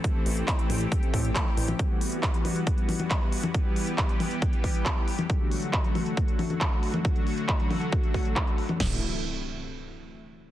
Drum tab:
CC |----------------|----------------|----------------|----------------|
HH |x-oxxxoxxxoxx-ox|x-oxxxoxxxoxx-ox|x-oxxxoxxxoxx-ox|x-oxxxoxxxoxx-ox|
CP |----x-------x---|----x-------x---|----x-------x---|----x-------x---|
SD |----------------|----------------|----------------|----------------|
CG |------o--------o|------o---oo---o|------o--------o|------o---oo---o|
BD |o---o---o-o-o---|o---o---o---o---|o---o---o-o-o---|o---o---o---o---|

CC |----------------|x---------------|
HH |xxoxxxoxxxoxxxox|----------------|
CP |----x-------x---|----------------|
SD |----------------|o---------------|
CG |------o--------o|----------------|
BD |o---o---o-o-o---|o---------------|